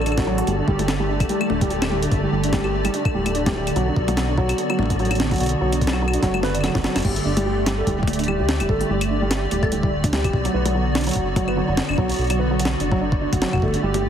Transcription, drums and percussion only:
0.02 claves
0.06 closed hi-hat, claves
0.12 claves
0.18 kick, snare, high tom
0.38 closed hi-hat
0.47 closed hi-hat
0.68 kick
0.79 closed hi-hat, high tom
0.88 snare, closed hi-hat
1.20 kick, closed hi-hat, claves
1.29 closed hi-hat
1.41 claves
1.50 high tom
1.61 kick, closed hi-hat
1.70 closed hi-hat
1.82 snare, claves
2.03 closed hi-hat
2.12 kick, closed hi-hat
2.44 closed hi-hat
2.53 kick, snare, closed hi-hat
2.64 claves
2.85 closed hi-hat, claves
2.94 closed hi-hat
3.05 kick, claves
3.26 closed hi-hat, claves
3.35 closed hi-hat
3.46 kick, snare, high tom
3.49 high tom
3.52 high tom
3.67 closed hi-hat, claves
3.76 closed hi-hat
3.96 kick
4.08 closed hi-hat, high tom
4.17 snare, closed hi-hat
4.38 kick
4.49 closed hi-hat, claves
4.58 closed hi-hat
4.70 claves
4.79 high tom
4.83 high tom
4.86 high tom
4.90 kick, closed hi-hat, high tom
4.92 high tom
4.96 closed hi-hat, high tom
5.05 closed hi-hat
5.11 closed hi-hat, claves
5.15 closed hi-hat
5.20 snare
5.31 kick, closed hi-hat
5.34 closed hi-hat
5.36 closed hi-hat
5.38 closed hi-hat
5.40 closed hi-hat
5.43 closed hi-hat
5.46 closed hi-hat
5.49 closed hi-hat
5.72 closed hi-hat
5.81 kick, closed hi-hat
5.87 snare
5.93 claves
6.08 claves
6.14 closed hi-hat
6.23 kick, snare, closed hi-hat
6.34 high tom, claves
6.43 snare
6.55 closed hi-hat, claves
6.61 snare, closed hi-hat, claves
6.64 claves
6.68 claves
6.75 kick, snare, high tom
6.84 snare
6.96 snare, closed hi-hat, claves
6.98 closed hi-hat
7.00 closed hi-hat
7.02 kick, closed hi-hat, crash
7.16 closed hi-hat
7.37 closed hi-hat, high tom
7.66 snare, closed hi-hat
7.87 kick, closed hi-hat
8.03 kick
8.08 closed hi-hat, high tom
8.13 closed hi-hat
8.19 closed hi-hat
8.24 closed hi-hat
8.28 claves
8.49 snare
8.60 closed hi-hat, claves
8.69 kick
8.81 closed hi-hat
9.01 closed hi-hat, claves
9.31 snare, closed hi-hat
9.51 closed hi-hat
9.63 kick, claves
9.72 closed hi-hat
9.83 kick
10.04 kick, closed hi-hat, high tom
10.13 snare
10.24 kick, closed hi-hat, claves
10.33 kick
10.45 closed hi-hat
10.66 closed hi-hat, high tom
10.95 snare, closed hi-hat
10.98 closed hi-hat
11.01 closed hi-hat
11.04 closed hi-hat
11.07 closed hi-hat
11.09 closed hi-hat
11.11 closed hi-hat
11.13 closed hi-hat
11.16 kick, closed hi-hat
11.36 kick, closed hi-hat, high tom
11.48 claves
11.77 snare
11.89 claves
11.91 claves
11.93 claves
11.96 kick, claves
12.09 closed hi-hat
12.12 closed hi-hat
12.14 closed hi-hat
12.16 closed hi-hat
12.19 closed hi-hat
12.21 closed hi-hat
12.24 closed hi-hat
12.27 closed hi-hat
12.30 closed hi-hat, claves
12.60 closed hi-hat
12.65 snare
12.80 closed hi-hat
12.92 kick
13.12 kick
13.33 kick, closed hi-hat, high tom
13.42 snare
13.53 kick, claves
13.55 kick
13.58 kick
13.60 kick
13.62 kick
13.65 kick
13.68 kick
13.71 kick, closed hi-hat
13.94 closed hi-hat, high tom

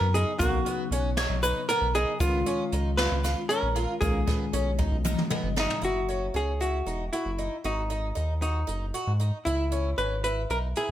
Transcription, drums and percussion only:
0.15 closed hi-hat
0.40 kick, closed hi-hat, shaker
0.66 closed hi-hat
0.92 closed hi-hat
1.17 snare, closed hi-hat
1.43 closed hi-hat, shaker
1.69 closed hi-hat, shaker
1.94 closed hi-hat
2.20 kick, closed hi-hat, shaker
2.46 closed hi-hat
2.72 closed hi-hat
2.98 snare, closed hi-hat
3.24 snare, closed hi-hat, shaker
3.50 closed hi-hat, shaker
3.76 closed hi-hat
4.02 kick, closed hi-hat, shaker
4.28 kick, snare, closed hi-hat
4.53 closed hi-hat, shaker
4.79 kick
5.05 mid tom, shaker
5.18 mid tom
5.31 mid tom
5.57 snare, shaker
5.70 floor tom
5.83 closed hi-hat
6.09 closed hi-hat
6.36 closed hi-hat
6.62 closed hi-hat
6.87 closed hi-hat
7.12 closed hi-hat
7.38 closed hi-hat
7.64 closed hi-hat
7.90 closed hi-hat
8.16 closed hi-hat
8.42 closed hi-hat
8.68 closed hi-hat
8.94 closed hi-hat
9.20 closed hi-hat
9.46 closed hi-hat
9.71 closed hi-hat
9.98 closed hi-hat
10.24 closed hi-hat
10.50 closed hi-hat
10.75 closed hi-hat

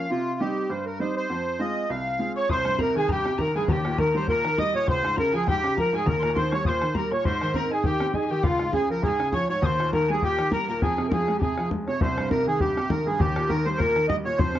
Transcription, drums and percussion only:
2.49 bodhran
2.65 bodhran
2.79 bodhran
3.09 bodhran
3.25 bodhran
3.38 bodhran
3.68 bodhran
3.85 bodhran
3.98 bodhran
4.28 bodhran
4.45 bodhran
4.58 bodhran
4.88 bodhran
5.05 bodhran
5.18 bodhran
5.48 bodhran
5.64 bodhran
5.78 bodhran
6.07 bodhran
6.23 bodhran
6.30 bodhran
6.37 bodhran
6.53 bodhran
6.65 bodhran
6.82 bodhran
6.95 bodhran
7.12 bodhran
7.25 bodhran
7.41 bodhran
7.54 bodhran
7.84 bodhran
8.00 bodhran
8.14 bodhran
8.44 bodhran
8.60 bodhran
8.73 bodhran
9.03 bodhran
9.20 bodhran
9.32 bodhran
9.63 bodhran
9.80 bodhran
9.93 bodhran
10.23 bodhran
10.39 bodhran
10.52 bodhran
10.82 bodhran
10.98 bodhran
11.12 bodhran
11.28 bodhran
11.42 bodhran
11.58 bodhran
11.71 bodhran
11.88 bodhran
12.01 bodhran
12.18 bodhran
12.31 bodhran
12.60 bodhran
12.77 bodhran
12.90 bodhran
13.20 bodhran
13.36 bodhran
13.50 bodhran
13.80 bodhran
13.96 bodhran
14.10 bodhran
14.39 bodhran
14.55 bodhran

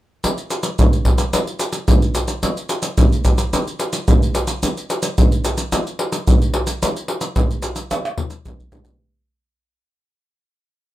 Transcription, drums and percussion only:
0.24 pandeiro, maracas, surdo
0.38 pandeiro, maracas
0.50 pandeiro, maracas
0.63 pandeiro, maracas
0.79 pandeiro, maracas, surdo
0.93 pandeiro, maracas
1.05 pandeiro, surdo
1.18 pandeiro, maracas
1.33 pandeiro, maracas, surdo
1.47 pandeiro, maracas
1.59 pandeiro, maracas
1.72 pandeiro, maracas
1.88 pandeiro, maracas, surdo
2.02 pandeiro, maracas
2.15 pandeiro, maracas
2.28 pandeiro, maracas
2.43 pandeiro, maracas, surdo
2.57 pandeiro, maracas
2.69 pandeiro, maracas
2.82 pandeiro, maracas
2.98 pandeiro, maracas, surdo
3.12 pandeiro, maracas
3.25 pandeiro, maracas, surdo
3.38 pandeiro, maracas
3.53 pandeiro, maracas, surdo
3.68 pandeiro, maracas
3.79 pandeiro, maracas
3.93 pandeiro, maracas
4.08 pandeiro, maracas, surdo
4.23 pandeiro, maracas
4.35 pandeiro, maracas
4.47 pandeiro, maracas
4.63 pandeiro, maracas, surdo
4.77 pandeiro, maracas
4.90 pandeiro, maracas
5.03 pandeiro, maracas
5.18 pandeiro, maracas, surdo
5.32 pandeiro, maracas
5.45 pandeiro, maracas
5.58 pandeiro, maracas
5.72 pandeiro, maracas, surdo
5.87 pandeiro, maracas
5.99 pandeiro
6.12 pandeiro, maracas
6.28 pandeiro, maracas, surdo
6.42 pandeiro, maracas
6.54 pandeiro
6.67 pandeiro, maracas
6.83 pandeiro, maracas, surdo
6.96 pandeiro, maracas
7.08 pandeiro
7.21 pandeiro, maracas
7.36 pandeiro, maracas, surdo
7.51 pandeiro, maracas
7.62 pandeiro, maracas
7.76 pandeiro, maracas
7.91 pandeiro, tamborim, maracas, surdo
8.05 pandeiro, tamborim, maracas
8.18 surdo, pandeiro
8.30 pandeiro, maracas
8.46 pandeiro, maracas, surdo
8.60 pandeiro, maracas, surdo
8.72 pandeiro, maracas, surdo
8.85 pandeiro, maracas, surdo

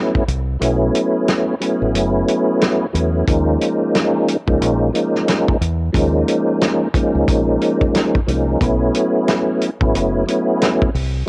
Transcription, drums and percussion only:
0.15 kick
0.28 closed hi-hat
0.61 closed hi-hat
0.95 closed hi-hat
1.28 snare, closed hi-hat
1.62 closed hi-hat
1.95 closed hi-hat
2.28 closed hi-hat
2.61 snare, closed hi-hat
2.95 closed hi-hat
3.28 kick, closed hi-hat
3.61 closed hi-hat
3.95 snare, closed hi-hat
4.28 closed hi-hat
4.47 kick
4.62 closed hi-hat
4.95 closed hi-hat
5.15 snare
5.28 snare, closed hi-hat
5.48 kick
5.61 closed hi-hat
5.94 kick, closed hi-hat
6.28 closed hi-hat
6.61 snare, closed hi-hat
6.94 kick, closed hi-hat
7.28 kick, closed hi-hat
7.62 closed hi-hat
7.81 kick
7.95 snare, closed hi-hat
8.15 kick
8.28 closed hi-hat
8.61 kick, closed hi-hat
8.95 closed hi-hat
9.28 snare, closed hi-hat
9.61 closed hi-hat
9.81 kick
9.95 closed hi-hat
10.28 closed hi-hat
10.61 snare, closed hi-hat
10.82 kick
10.95 open hi-hat

